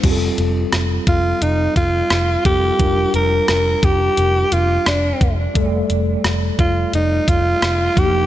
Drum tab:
CC |x-------|--------|--------|
HH |xxxxxxxx|xxxxxxxx|xxxxxxxx|
SD |--r---r-|--r---r-|--r---r-|
BD |o--o-o-o|o--o---o|o--o-o-o|